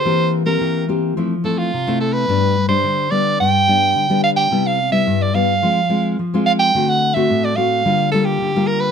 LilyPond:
<<
  \new Staff \with { instrumentName = "Soprano saxophone" } { \time 4/4 \key c \major \tempo 4 = 108 c''8. bes'8. r4 a'16 f'8. a'16 b'16~ | b'8. c''8. d''8 g''4. f''16 g''16~ | g''16 f''8 e''8 d''16 f''4. r8 f''16 g''16~ | g''16 fis''8 e''8 d''16 f''4 a'16 g'8. bes'16 b'16 | }
  \new Staff \with { instrumentName = "Nylon-string guitar" } { \time 4/4 \key c \major << { <bes c' g'>8. <bes c' g'>8. <bes c' g'>8 <a c' e'>16 r16 <a c' e'>8 r16 <a c' e'>8. | <g b d'>8 r16 <g d'>8. <g b d'>8. r16 <g b d'>8. <g b d'>8. | <g b e'>8 r16 <g b e'>8. <g b e'>16 r16 <aes c' f'>16 r16 <aes c' f'>8 r16 <aes c' f'>8. | <a c' fis'>8. <a c' fis'>8. <a c' fis'>8 <g bes f'>8 <g bes f'>8. <g bes f'>8. | } \\ { e4 e4 f4 c4 | g,4 d4 g,4 d4 | c4 g,4 f4 f4 | d4 a,4 d4 d4 | } >> }
>>